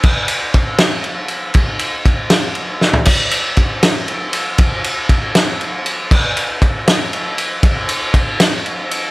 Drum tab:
CC |x-----------|------------|x-----------|------------|
RD |--x-x-x-x-x-|x-x-x-x-x---|--x-x-x-x-x-|x-x-x-x-x-x-|
SD |------o-----|------o---o-|------o-----|------o-----|
FT |------------|-----------o|------------|------------|
BD |o---o-------|o---o-------|o---o-------|o---o-------|

CC |x-----------|------------|
RD |--x-x-x-x-x-|x-x-x-x-x-x-|
SD |------o-----|------o-----|
FT |------------|------------|
BD |o---o-------|o---o-------|